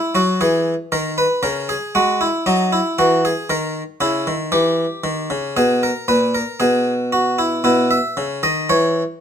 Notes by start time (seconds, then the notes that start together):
Already playing: E4
0.15 F#3 F#4
0.41 E3 G#4
0.92 D#3 A#4
1.18 B4
1.43 C#3 A#4
1.69 G#4
1.95 G#3 F#4
2.21 E4
2.46 F#3 D#4
2.72 E4
2.99 E3 F#4
3.25 G#4
3.50 D#3 A#4
4.01 C#3 E4
4.27 D#3
4.52 E3 G4
5.04 D#3
5.30 C#3
5.57 B2 G#4
5.83 A#4
6.08 A#2 B4
6.35 A#4
6.60 B2 G#4
7.12 F#4
7.39 E4
7.64 B2 E4
7.91 E5
8.17 C#3
8.43 D#3 D#5
8.69 E3 C#5